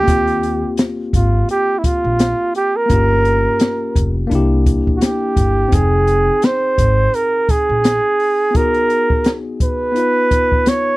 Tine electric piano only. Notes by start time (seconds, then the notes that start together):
0.03 A#3 C4
0.08 F4 G4
2.86 A#3 C#4
2.91 F4 G4
4.27 A#3 D4
4.32 E4 G4
5.68 C4 D#4
5.73 G#4 G5
8.51 B3 D#4
8.56 F#4 G#4
9.92 B3 D#4
9.97 F4 B4